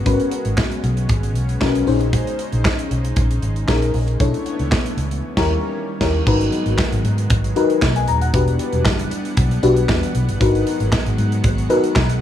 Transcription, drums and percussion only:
0.06 kick medium
0.06 closed hi-hat medium
0.20 closed hi-hat medium
0.31 closed hi-hat medium
0.45 closed hi-hat medium
0.58 kick loud
0.58 snare loud
0.58 clap medium
0.72 closed hi-hat medium
0.84 closed hi-hat medium
0.97 closed hi-hat medium
1.09 kick loud
1.09 closed hi-hat medium
1.23 closed hi-hat medium
1.35 closed hi-hat medium
1.49 closed hi-hat soft
1.61 kick loud
1.61 snare loud
1.61 clap medium
1.75 closed hi-hat medium
1.87 open hi-hat medium
2.01 closed hi-hat medium
2.13 kick loud
2.13 closed hi-hat medium
2.27 closed hi-hat medium
2.39 closed hi-hat medium
2.52 closed hi-hat medium
2.65 kick loud
2.65 snare loud
2.65 clap loud
2.79 closed hi-hat medium
2.91 closed hi-hat medium
3.05 closed hi-hat medium
3.16 kick loud
3.16 closed hi-hat medium
3.31 closed hi-hat medium
3.42 closed hi-hat medium
3.56 closed hi-hat soft
3.68 kick loud
3.68 snare loud
3.68 clap medium
3.82 closed hi-hat medium
3.94 open hi-hat medium
4.08 closed hi-hat medium
4.20 kick loud
4.20 closed hi-hat medium
4.34 closed hi-hat medium
4.46 closed hi-hat medium
4.59 closed hi-hat soft
4.72 kick loud
4.72 snare loud
4.72 clap loud
4.86 closed hi-hat medium
4.98 closed hi-hat medium
5.11 closed hi-hat medium
5.37 kick loud
5.37 snare loud
5.37 crash medium
6.01 kick medium
6.01 snare loud
6.01 crash medium
6.27 kick loud
6.27 crash medium
6.41 closed hi-hat medium
6.52 closed hi-hat medium
6.66 closed hi-hat soft
6.78 kick loud
6.78 snare loud
6.78 clap loud
6.92 closed hi-hat medium
7.05 closed hi-hat medium
7.18 closed hi-hat medium
7.30 kick loud
7.30 closed hi-hat medium
7.44 closed hi-hat medium
7.56 closed hi-hat medium
7.70 closed hi-hat medium
7.82 kick loud
7.82 snare loud
7.82 clap medium
7.96 closed hi-hat medium
8.08 closed hi-hat medium
8.21 closed hi-hat medium
8.34 kick loud
8.34 closed hi-hat medium
8.48 closed hi-hat medium
8.59 closed hi-hat medium
8.73 closed hi-hat medium
8.85 kick loud
8.85 snare loud
8.85 clap loud
8.99 closed hi-hat medium
9.11 closed hi-hat medium
9.25 closed hi-hat medium
9.37 kick loud
9.37 closed hi-hat medium
9.51 closed hi-hat medium
9.63 closed hi-hat medium
9.77 closed hi-hat medium
9.89 kick loud
9.89 snare loud
9.89 clap medium
10.03 closed hi-hat medium
10.15 closed hi-hat medium
10.29 closed hi-hat medium
10.41 kick loud
10.41 closed hi-hat medium
10.55 closed hi-hat medium
10.67 closed hi-hat medium
10.80 closed hi-hat soft
10.92 kick loud
10.92 snare loud
10.92 clap loud
11.06 closed hi-hat medium
11.18 closed hi-hat medium
11.32 closed hi-hat medium
11.44 kick loud
11.44 closed hi-hat loud
11.58 closed hi-hat medium
11.70 closed hi-hat medium
11.84 closed hi-hat medium
11.96 kick loud
11.96 snare loud
11.96 clap medium
12.09 closed hi-hat medium

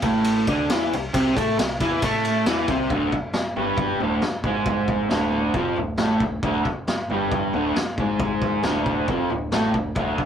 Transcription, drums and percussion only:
0.02 kick loud
0.02 ride medium
0.24 ride loud
0.47 kick loud
0.47 ride medium
0.70 snare loud
0.70 ride loud
0.93 ride medium
1.14 kick loud
1.14 ride loud
1.37 kick loud
1.37 ride medium
1.59 snare loud
1.59 ride loud
1.80 kick loud
1.80 ride medium
2.02 kick loud
2.02 ride loud
2.25 ride medium
2.46 snare loud
2.46 ride medium
2.68 kick loud
2.68 ride medium
2.90 kick loud
2.90 floor tom medium
3.12 kick medium
3.12 floor tom medium
3.33 snare loud
3.33 floor tom medium
3.56 floor tom medium
3.77 kick loud
3.77 floor tom medium
4.00 floor tom medium
4.22 snare loud
4.22 floor tom medium
4.43 kick medium
4.43 floor tom medium
4.66 kick loud
4.66 floor tom medium
4.88 kick medium
4.88 floor tom medium
5.10 snare loud
5.10 floor tom medium
5.32 floor tom medium
5.54 kick loud
5.54 floor tom medium
5.76 floor tom medium
5.97 snare loud
5.97 floor tom medium
6.20 kick medium
6.20 floor tom medium
6.43 kick loud
6.43 floor tom medium
6.65 kick medium
6.65 floor tom medium
6.87 snare loud
6.87 floor tom medium
7.10 floor tom medium
7.32 kick loud
7.32 floor tom medium
7.53 floor tom medium
7.76 snare loud
7.76 floor tom medium
7.98 kick medium
7.98 floor tom medium
8.19 kick loud
8.19 floor tom medium
8.42 kick medium
8.42 floor tom medium
8.63 snare loud
8.63 floor tom medium
8.86 kick medium
8.86 floor tom medium
9.08 kick loud
9.08 floor tom medium
9.30 floor tom medium
9.52 snare loud
9.52 floor tom medium
9.74 kick medium
9.74 floor tom medium
9.95 kick loud
9.95 floor tom medium
10.18 kick medium
10.18 floor tom medium

